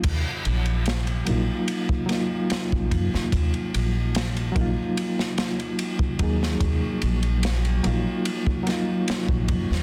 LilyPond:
<<
  \new Staff \with { instrumentName = "Reed electric piano" } { \time 4/4 \key ees \minor \tempo 4 = 73 r4. <ges bes ees' f'>4 <ges bes ees' f'>4.~ | <ges bes ees' f'>4. <ges bes ees' f'>2 <ges bes ees' aes'>8 | r4. <ges bes ees' f'>4 <ges bes ees' f'>4. | }
  \new Staff \with { instrumentName = "Synth texture" } { \clef bass \time 4/4 \key ees \minor ges1~ | ges1~ | ges1 | }
  \new Staff \with { instrumentName = "Upright bass" } { \clef bass \time 4/4 \key ees \minor ees,16 r16 bes,,4 bes,,16 r4. bes,,16 ges,16 ees,16 | ees,16 r16 bes,,4 bes,,16 r4. r16 ees,8 | ees,16 r16 bes,,4 bes,,16 r4. bes,,16 ges,16 ees,16 | }
  \new DrumStaff \with { instrumentName = "Drums" } \drummode { \time 4/4 <cymc bd cymr>8 cymr16 cymr16 <cymr sn>16 cymr16 cymr8 cymr16 bd16 <cymr sn>8 <cymr sn>16 bd16 <bd cymr>16 sn16 | <bd cymr>16 cymr16 cymr8 <cymr sn>16 cymr16 <bd cymr>8 cymr16 sn16 <cymr sn>16 cymr16 cymr16 bd16 <bd cymr>16 sn16 | <bd cymr>8 cymr16 cymr16 <cymr sn>16 cymr16 cymr8 cymr16 bd16 <cymr sn>8 <cymr sn>16 bd16 <bd cymr>16 sn16 | }
>>